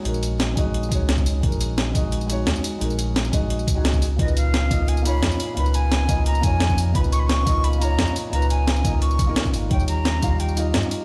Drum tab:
HH |x-x-x-x-x-x-x-o-|x-x-x-x-x-x-x-o-|x-x-x-x-x-x-x-o-|x-x-x-x-x-x-x-o-|
TB |-xx---x--xx--xx-|-xx---x--xx--xx-|-xx--xx--xx--xx-|-xx---x--xx--xx-|
SD |----o-------o---|----o-------o---|----o-------o---|----o-------o---|
BD |------o---o--o--|o-----o---------|------o---o--o--|o-----o---------|

HH |x-x-x-x-x-x-x-o-|x-x-x-x-x-x-x-o-|x-x-x-x-x-x-x-o-|x-x-x-x-x-x-x-o-|
TB |-xx---x--xx--xx-|-xx---x--xx--xx-|-xx--xx--xx--xx-|-xx---x--xx--xx-|
SD |----o-------o---|----o-------o---|----o-------o---|----o-------o---|
BD |------o---o--o--|o-----o---------|------o---o--o--|o-----o---------|